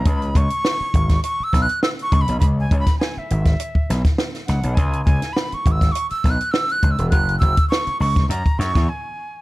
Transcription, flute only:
\new Staff \with { instrumentName = "Flute" } { \time 4/4 \key cis \dorian \tempo 4 = 102 b''8 cis'''4. \tuplet 3/2 { cis'''8 e'''8 fis'''8 e'''8 cis'''8 b''8 } | \tuplet 3/2 { b''8 gis''8 b''8 gis''8 e''4~ } e''4 r8 fis''8 | gis''8 gis''8 \tuplet 3/2 { b''8 cis'''8 e'''8 cis'''8 e'''8 fis'''8 e'''8 fis'''8 e'''8 } | fis'''8 e'''8 cis'''8 cis'''8 ais''8 cis'''8 gis''4 | }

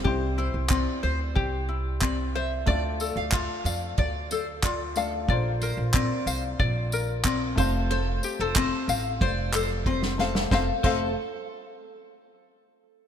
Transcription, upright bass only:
\new Staff \with { instrumentName = "Upright bass" } { \clef bass \time 4/4 \key f \major \tempo 4 = 92 c,8. c,8 r16 d,8 c,2 | d,8. d,8 r16 f,8 d,2 | bes,,8. bes,,8 r16 c,8 bes,,4. f,,8~ | f,,8 r16 f,,8 r16 a,,8 f,,2 |
f,,16 r16 f,,8 r2. | }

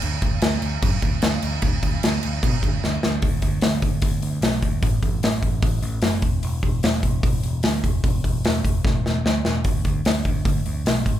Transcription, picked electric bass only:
\new Staff \with { instrumentName = "Picked electric bass" } { \clef bass \time 4/4 \key fis \minor \tempo 4 = 150 d,8 d,8 d,8 d,8 fis,8 d,8 d,8 d,8 | d,8 d,8 d,8 d,8 b,8 d,8 d,8 d,8 | d,8 d,8 d,8 d,8 d,8 d,8 b,,8 d,8 | a,,8 a,,8 a,,8 a,,8 a,,8 a,,8 fis,,8 e,,8 |
e,,8 e,,8 e,,8 e,,8 e,,8 e,,8 d,8 e,,8 | e,,8 e,,8 e,,8 e,,8 e,,8 e,,8 d,8 e,,8 | d,8 d,8 d,8 d,8 d,8 d,8 b,,8 gis,,8 | }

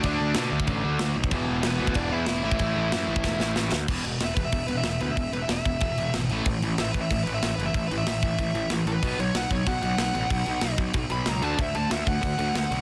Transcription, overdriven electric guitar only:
\new Staff \with { instrumentName = "Overdriven electric guitar" } { \time 4/4 \key a \major \tempo 4 = 187 <d' d''>4 r2. | r4 <b b'>4 <d' d''>8 <e' e''>4 <e' e''>8~ | <e' e''>2. r4 | r4 \tuplet 3/2 { e''8 b'8 e''8 e''8 b'8 e''8 e''8 b'8 e''8 } |
\tuplet 3/2 { e''8 b'8 e''8 } e''2 r4 | r4 \tuplet 3/2 { e''8 b'8 e''8 e''8 b'8 e''8 e''8 b'8 e''8 } | \tuplet 3/2 { e''8 b'8 e''8 } e''2 r8 b'8~ | b'8 cis''8 fis''8 cis''8 fis''8 fis''4.~ |
fis''4. r4 b''8 ais''8 a''8 | e''8 a''8 e''8 fis''2~ fis''8 | }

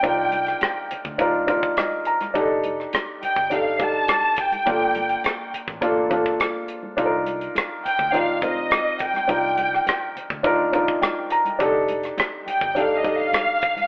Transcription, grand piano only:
\new Staff \with { instrumentName = "Grand piano" } { \time 4/4 \key c \dorian \tempo 4 = 104 << { r2. ees''8 bes''8 | r1 | r1 | r1 |
r2 r8 ees''8 g''8 bes''8 | r1 | } \\ { <d' ees' f' bes'>4. r8 <d' ees' f' bes'>8 <d' ees' f' bes'>4 r8 | <d' ees' g' a'>4. r8 <d' ees' g' a'>8 <d' ees' g' a'>4 r8 | <bes d' f' a'>4. r8 <bes d' f' a'>8 <bes d' f' a'>4 r8 | <d' ees' f' a' bes'>4. r8 <d' ees' f' bes'>8 <c' ees' f' bes'>4 r8 |
<d' ees' f' bes'>4. r8 <d' ees' f' bes'>8 <d' ees' f' bes'>4 r8 | <d' ees' g' a'>4. r8 <d' ees' g' a'>8 <d' ees' g' a'>4 r8 | } >> }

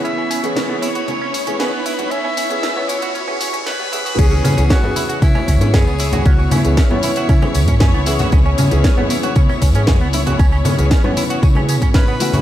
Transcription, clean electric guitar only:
\new Staff \with { instrumentName = "Clean electric guitar" } { \time 4/4 \key cis \minor \tempo 4 = 116 cis'16 cis'16 cis'16 cis'16 cis'16 b16 e'16 fis'16 cis'16 cis'16 cis'16 cis'16 cis'16 b16 e'16 fis'16 | cis'16 cis'16 cis'16 cis'16 cis'16 b16 e'16 fis'16 cis'16 cis'16 cis'16 cis'16 cis'16 b16 e'16 fis'16 | cis'16 cis'16 cis'16 cis'16 cis'16 b16 e'16 fis'16 cis'16 cis'16 cis'16 cis'16 cis'16 b16 e'16 fis'16 | cis'16 cis'16 cis'16 cis'16 cis'16 b16 e'16 fis'16 cis'16 cis'16 cis'16 cis'16 cis'16 b16 e'16 fis'16 |
cis'16 cis'16 cis'16 cis'16 cis'16 b16 e'16 fis'16 cis'16 cis'16 cis'16 cis'16 cis'16 b16 e'16 fis'16 | cis'16 cis'16 cis'16 cis'16 cis'16 b16 e'16 fis'16 cis'16 cis'16 cis'16 cis'16 cis'16 b16 e'16 fis'16 | }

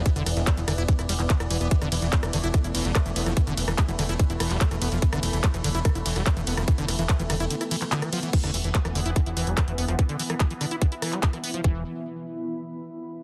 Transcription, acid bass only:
\new Staff \with { instrumentName = "Acid bass" } { \clef bass \time 4/4 \key e \minor \tempo 4 = 145 e16 d16 e16 e16 g16 e16 d16 e'16 d16 e'16 g16 e16 e16 e'16 e16 b16 | e16 d16 e16 e16 g16 e16 d16 e'16 d16 e'16 e16 g16 g16 e16 b16 f16 | e16 d16 e16 e16 g16 e16 d16 e'16 d16 e'16 e16 g16 g16 e16 b16 f16 | e16 d16 e16 e16 g16 e16 d16 e'16 d16 e'16 e16 g16 g16 e16 b16 f16 |
e16 d16 e16 e16 g16 e16 d16 e'16 d16 e'16 e16 e16 d16 e16 f16 e16 | e16 d16 e16 e16 g16 e16 d16 e'16 d16 e'16 e16 g16 g16 e16 b16 f16 | e16 d16 e16 e16 g16 e16 d16 e'16 d16 e'16 e16 g16 r16 e16 b16 f16 | e8 r2. r8 | }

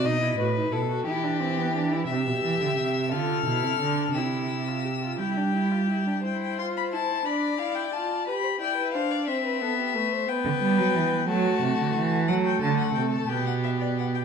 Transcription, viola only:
\new Staff \with { instrumentName = "Viola" } { \time 6/8 \key e \minor \tempo 4. = 59 dis'16 e'16 fis'16 dis'16 e'16 fis'16 e'16 d'16 c'16 b16 d'16 e'16 | \key c \major g'4. f'8 e'8 d'8 | e'8. f'16 g'16 f'16 e'16 d'16 e'16 f'16 e'16 d'16 | e'8 f'8 e'8 d'8 e'8 f'8 |
g'8 e'8 d'8 c'8 b8 a8 | b4. a4. | a4. b4. | }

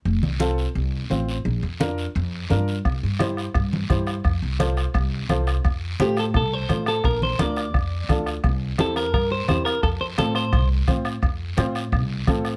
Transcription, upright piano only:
\new Staff \with { instrumentName = "Upright piano" } { \time 4/4 \key f \major \tempo 4 = 172 r4 <c' f' a'>8 r4. <c' f' c''>8 r8 | r4 <d' f' bes'>8 r4. <d' f' bes'>8 r8 | r4 <e' g' c''>8 r4. <e' g' c''>8 r8 | r4 <f' a' c''>8 r4. <f' a' c''>8 r8 |
r4 <f' a' c''>8 r4. <f' a' c''>8 r8 | r4 <d' f' bes'>8 r4. <d' f' a'>8 r8 | r4 <c' e' g'>8 r4. <c' e' g'>8 r8 | r4 <c' f' a'>8 r4. <c' f' c''>8 r8 |
r4 <c' f' c''>8 r4. <c' f' a'>8 r8 | }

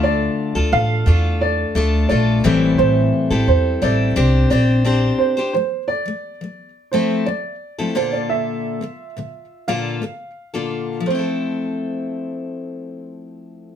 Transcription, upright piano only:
\new Staff \with { instrumentName = "Upright piano" } { \time 4/4 \key f \major \tempo 4 = 87 d''4 f''4 d''4 d''4 | c''4 c''8 d''4 d''4 c''8 | c''8 d''4. c''8 d''4 c''16 d''16 | e''2 f''4. r8 |
c''1 | }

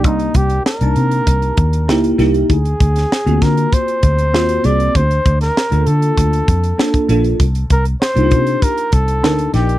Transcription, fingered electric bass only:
\new Staff \with { instrumentName = "Fingered electric bass" } { \clef bass \time 4/4 \key c \dorian \tempo 4 = 98 c,8 c,8 r16 c,16 c8 c,8 ees,8 cis,8 c,8 | d,8 d,8 r16 d,16 d8 r8 d,8 ees,8 c,8 | d,8 d,8 r16 d,16 d8 d,8 f,8 r8 bes,,8 | c,8 c,8 r16 c,16 c8 r8 c,8 d,8 bes,,8 | }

